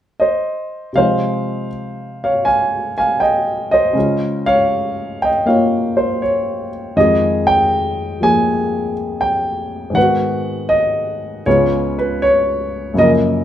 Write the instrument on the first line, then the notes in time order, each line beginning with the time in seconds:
grand piano
0.20 C5 D#5
0.93 C3 F3 G#3 F5
0.98 D#4 C5
2.24 C#5 F5
2.45 F5 G#5
2.98 F5 G#5
3.20 D#5 G5
3.71 C5 D#5
3.93 C#3 G#3 C#4
3.98 F4
4.46 C#5 F5
5.22 D#5 G5
5.45 A#3 D#4 F4 C#5 F5
5.97 C5
6.22 C#5
6.96 F2 D#3 G#3 F4 G#4 D#5
7.47 G5
8.20 F3 A#3 G#4 G#5
9.21 G5
9.90 G#2 D#3
9.95 B3 B4 F#5
10.01 F#4
10.69 D#5
11.46 C#2 C#3 B3 F4 C#5
11.99 B4
12.22 C#5
12.94 F#2 C#3 A#3
12.98 F3 A#4 D#5